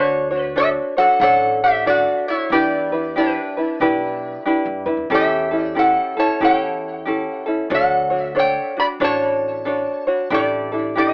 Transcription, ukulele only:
0.00 0.31 D4 medium
0.00 0.31 F#4 medium
0.00 0.31 A4 medium
0.00 0.30 C#5 medium
0.31 0.55 D4 soft
0.31 0.56 F#4 soft
0.31 0.55 C#5 soft
0.56 0.97 D4 medium
0.56 0.97 F#4 medium
0.56 0.96 A4 medium
0.56 0.96 C#5 medium
0.97 1.21 D4 soft
0.97 1.21 F#4 soft
0.97 1.21 C#5 medium
1.21 1.86 D4 medium
1.21 1.85 A4 medium
1.21 1.86 C#5 medium
1.86 2.52 D4 medium
1.86 2.51 F#4 medium
1.86 2.51 A4 medium
2.52 2.92 D4 medium
2.52 2.92 E4 medium
2.52 2.92 G4 medium
2.52 2.91 B4 medium
2.92 3.15 D4 soft
2.92 3.16 E4 soft
2.92 3.16 B4 soft
3.16 3.57 D4 medium
3.16 3.57 E4 medium
3.16 3.56 G4 medium
3.16 3.56 B4 medium
3.57 3.80 D4 soft
3.57 3.80 E4 soft
3.57 3.81 B4 soft
3.81 4.45 D4 medium
3.81 4.47 E4 medium
3.81 4.45 G4 medium
3.81 4.46 B4 medium
4.45 4.86 D4 medium
4.45 4.86 E4 medium
4.45 4.86 G4 medium
4.45 4.85 B4 medium
4.86 5.10 D4 soft
4.86 5.10 E4 soft
4.86 5.10 B4 soft
5.10 5.51 C#4 medium
5.10 5.51 E4 medium
5.10 5.51 G4 medium
5.10 5.50 A4 medium
5.51 5.75 C#4 soft
5.51 5.75 E4 soft
5.51 5.75 A4 soft
5.75 6.17 C#4 medium
5.75 6.17 E4 medium
5.75 6.16 G4 medium
5.75 6.16 A4 medium
6.17 6.41 C#4 soft
6.17 6.41 E4 soft
6.17 6.41 A4 medium
6.41 7.06 C#4 medium
6.41 7.06 E4 medium
6.41 7.04 G4 medium
6.41 7.07 A4 medium
7.05 7.47 C#4 medium
7.05 7.46 E4 medium
7.05 7.46 G4 medium
7.05 7.45 A4 medium
7.46 7.70 C#4 soft
7.46 7.71 E4 soft
7.46 7.69 A4 medium
7.70 8.11 D4 medium
7.70 8.10 F#4 medium
7.70 8.11 A4 medium
7.70 8.09 C#5 medium
8.10 8.34 D4 soft
8.10 8.34 F#4 soft
8.10 8.35 C#5 soft
8.35 8.76 D4 medium
8.35 8.76 A4 medium
8.35 8.77 C#5 medium
8.77 9.00 D4 soft
8.77 9.00 F#4 soft
9.00 9.65 D4 medium
9.00 9.66 F#4 medium
9.00 9.65 A4 medium
9.00 9.66 C#5 loud
9.65 10.07 D4 medium
9.65 10.07 F#4 medium
9.65 10.06 A4 medium
9.65 10.06 C#5 medium
10.07 10.30 D4 soft
10.07 10.31 F#4 soft
10.07 10.31 C#5 medium
10.30 10.72 D4 medium
10.30 10.72 E4 medium
10.30 10.71 G4 medium
10.30 10.71 A4 medium
10.72 10.95 D4 soft
10.72 10.96 E4 soft
10.72 10.96 A4 soft
10.95 11.13 D4 medium
10.95 11.13 E4 medium
10.95 11.13 G4 medium
10.95 11.13 A4 medium

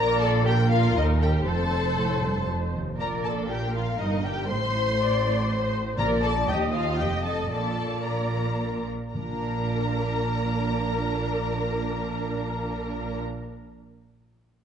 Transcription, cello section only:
0.00 0.93 A#2 medium
0.97 1.47 D#2 medium
1.48 1.92 F2 soft
1.98 2.22 A2 soft
2.24 2.49 G2 soft
2.49 2.74 F2 soft
2.74 3.00 D#2 soft
2.99 3.96 A#2 soft
4.00 4.51 G2 soft
4.51 5.99 A2 soft
5.99 6.48 A#2 medium
6.49 6.99 D#2 medium
6.99 7.52 F2 soft
7.52 8.90 A#2 soft
9.15 13.18 A#2 soft

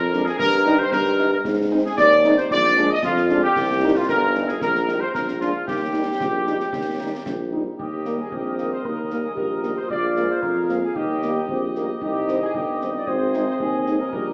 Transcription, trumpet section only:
0.00 0.23 A#4 medium
0.28 0.33 G#4 medium
0.38 0.75 A#4 loud
0.81 0.93 C5 loud
0.92 1.29 A#4 loud
1.33 1.39 A#4 medium
1.86 1.98 G#4 medium
1.97 2.34 D5 loud
2.39 2.51 C5 medium
2.51 2.88 D5 loud
2.92 3.03 D#5 loud
3.04 3.40 F4 medium
3.43 3.92 G4 medium
3.97 4.02 F4 medium
4.08 4.45 A#4 loud
4.51 4.63 G#4 medium
4.62 4.99 A#4 medium
5.02 5.08 C5 medium
5.14 5.26 A#4 medium
5.40 5.65 F4 medium
5.67 7.48 G4 medium
7.78 8.15 G4 medium
8.20 8.32 G#4 medium
8.33 8.72 G4 medium
8.72 8.84 C5 medium
8.85 9.24 A#4 medium
9.25 9.31 G#4 medium
9.36 9.73 A#4 medium
9.77 9.89 C5 medium
9.89 10.26 D5 medium
10.30 10.42 C5 medium
10.41 10.82 A#4 medium
10.84 10.96 G#4 medium
10.96 11.71 G4 medium
12.02 12.39 G4 medium
12.42 12.54 G#4 medium
12.55 12.92 G4 medium
12.96 13.08 D5 medium
13.08 13.47 C5 medium
13.49 13.54 C5 medium
13.60 13.97 G#4 medium
14.00 14.10 A#4 medium
14.11 14.33 A#4 medium

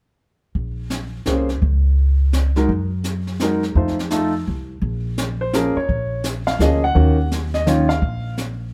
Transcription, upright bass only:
0.55 1.22 A#1 medium
1.26 1.59 C2 medium
1.62 2.65 C#2 medium
2.69 3.72 F#2 medium
3.75 4.43 F2 medium
4.48 4.80 C2 medium
4.82 5.72 A#1 medium
5.76 muted upright bass stroke soft
5.89 6.56 A#1 medium
6.59 6.92 D2 medium
6.95 7.98 D#2 medium
8.02 8.73 A#1 medium

